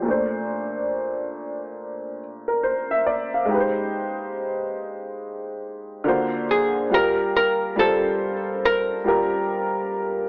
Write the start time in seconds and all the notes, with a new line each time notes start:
0.02 A#2 A3
0.08 D4 C5
2.48 A#4
2.63 C5
2.91 E5
3.06 D5
3.34 F5
3.45 G#3 D#4
3.51 G4 B4
3.60 C5
6.04 D3 A#3 F4 F#4
6.08 C5
6.51 G#4
6.90 G3 F4 G4
6.94 A#4
7.37 A#4
7.76 G3 F4 A4
7.80 C5
8.65 A#4
9.04 G3 F4 G4
9.08 A#4